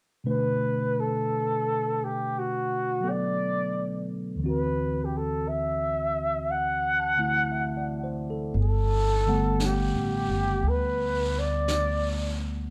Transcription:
0.24 tine electric piano B2 D3 A3 D4 B4
0.30 flugelhorn B4
1.00 flugelhorn A4
2.04 flugelhorn G4
2.39 flugelhorn F#4
3.01 tine electric piano F#3 B3 A4
3.10 flugelhorn D5
4.36 tine electric piano D2 D3
4.40 tine electric piano E3 C4
4.46 tine electric piano F#4, flugelhorn B4
5.05 flugelhorn G4
5.17 flugelhorn A4
5.48 flugelhorn E5
6.51 flugelhorn F#5
7.00 tine electric piano A5
7.17 tine electric piano D3 A3 E4
7.26 tine electric piano F#5
7.52 tine electric piano E5
7.77 tine electric piano D5
8.04 tine electric piano C5
8.30 tine electric piano A4
8.54 upright bass G1, brush sweep
8.61 flugelhorn A4
9.27 tine electric piano D3 G3 A3 B3 F#5
9.60 brush sweep, snare, hi-hat pedal
9.65 flugelhorn G4
9.93 upright bass A1
10.28 upright bass F#1
10.63 upright bass D2, brush sweep
10.69 flugelhorn B4
11.39 flugelhorn D5
11.68 brush sweep, snare, hi-hat pedal

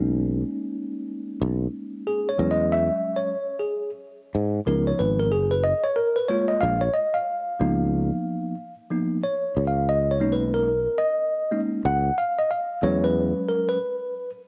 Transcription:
Already playing: fretless electric bass B1, tine electric piano G#3 A#3 C#4 D#4
1.42 fretless electric bass B1
2.07 tine electric piano G#4
2.29 tine electric piano C#5
2.38 fretless electric bass E2, tine electric piano F#3 G#3 C#4
2.51 tine electric piano D#5
2.72 tine electric piano E5
3.16 tine electric piano C#5
3.59 tine electric piano G#4
4.35 fretless electric bass G#2
4.66 fretless electric bass C#2, tine electric piano F3 B3 D#4 A#4
4.87 tine electric piano C#5
4.99 fretless electric bass G#1, tine electric piano B4
5.19 tine electric piano A#4
5.32 fretless electric bass F#1, tine electric piano G#4
5.51 tine electric piano B4
5.64 tine electric piano D#5
5.84 tine electric piano C#5
5.96 tine electric piano A#4
6.16 tine electric piano B4
6.29 tine electric piano G#3 A#3 F4 C#5
6.48 tine electric piano D#5
6.61 fretless electric bass A#1, tine electric piano F5
6.81 tine electric piano C#5
6.94 tine electric piano D#5
7.14 tine electric piano F5
7.60 fretless electric bass C#2, tine electric piano F3 A#3 B3 D#4
8.91 tine electric piano F3 A#3 B3 D#4
9.24 tine electric piano C#5
9.57 fretless electric bass C#2
9.67 tine electric piano F5
9.89 tine electric piano D#5
10.11 tine electric piano C#5
10.20 fretless electric bass B1, tine electric piano G#3 A#3 C#4 D#4
10.32 tine electric piano B4
10.54 tine electric piano A#4
10.98 tine electric piano D#5
11.51 tine electric piano G#3 A#3 C#4 D#4
11.85 fretless electric bass C#2, tine electric piano F#5
12.18 tine electric piano F5
12.39 tine electric piano D#5
12.51 tine electric piano F5
12.82 fretless electric bass E2, tine electric piano F#3 G#3 C#4 C#5
13.04 tine electric piano B4
13.48 tine electric piano A#4
13.69 tine electric piano B4

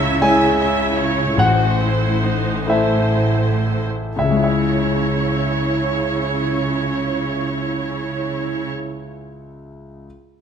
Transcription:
Already playing: grand piano C#2 C#5, cello section C#3, viola section E4 E5
0.21 grand piano G#3 E4 C#5 G#5, viola section E4 E5
0.59 viola section E5
0.97 viola section C#5
1.37 grand piano A1 F#5, cello section A2, viola section F#4 C5
1.80 viola section E4
2.22 viola section D#4
2.66 grand piano A3 E4 C5 E5, viola section E4 C5
4.16 grand piano C#2 E5, cello section C#3, viola section E4 C#5
4.23 grand piano C#3
4.30 grand piano G#3
4.37 grand piano E4
4.44 grand piano E5

